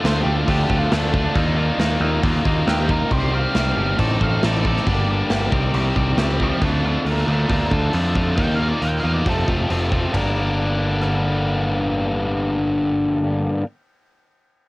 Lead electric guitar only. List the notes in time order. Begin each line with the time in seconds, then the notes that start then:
0.06 C5
0.22 G4
0.36 F4
0.50 G4
0.64 G4
0.79 F4
0.92 D4
2.70 G4
2.91 A#4
3.13 C5
3.35 F5
4.00 D5
4.23 F5
4.45 D5
4.67 D5
6.42 C5 F5
6.65 A4 F5
6.87 A4 F5
7.09 F4 D5
7.30 F4 D5
7.52 F4 D5
7.73 A4
8.39 G5
8.55 F5
8.69 D5
8.85 G5
9.00 F5
9.14 D5
9.29 A4